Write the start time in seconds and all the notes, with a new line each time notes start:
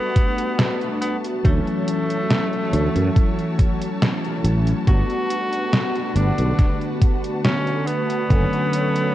Already playing: G3 A3 B3 D4 F#4 B4 F#5 A5
0.16 kick, closed hi-hat
0.38 closed hi-hat
0.59 snare, closed hi-hat
0.81 closed hi-hat
1.01 B3, closed hi-hat
1.24 closed hi-hat
1.43 D2 E3 F#3 A3 C#4 F#4 C#5, kick, closed hi-hat
1.67 closed hi-hat
1.88 closed hi-hat
2.10 closed hi-hat
2.30 snare, closed hi-hat
2.53 closed hi-hat
2.73 D2 E3 F#3 A3 C#4, closed hi-hat
2.96 F#2, closed hi-hat
3.16 kick, closed hi-hat
3.39 closed hi-hat
3.58 E3 F#3 A3 C#4, kick, closed hi-hat
3.82 closed hi-hat
4.02 snare, closed hi-hat
4.25 closed hi-hat
4.44 A1, closed hi-hat
4.67 closed hi-hat
4.86 G1 G3 A3 B3 D4 F#4 B4 F#5, kick, closed hi-hat
5.10 closed hi-hat
5.30 closed hi-hat
5.53 closed hi-hat
5.73 snare, closed hi-hat
5.95 closed hi-hat
6.15 G1 D3 A3 B3 D4 F#4, closed hi-hat
6.38 B1, closed hi-hat
6.59 kick, snare, closed hi-hat
6.81 closed hi-hat
7.02 kick, closed hi-hat
7.24 closed hi-hat
7.45 C#4, snare, closed hi-hat
7.67 closed hi-hat
7.87 B3, closed hi-hat
8.10 closed hi-hat
8.29 F#1 D3 F#3 A3 C#4 A4 C#5 B5, kick, closed hi-hat
8.53 closed hi-hat
8.73 closed hi-hat
8.96 closed hi-hat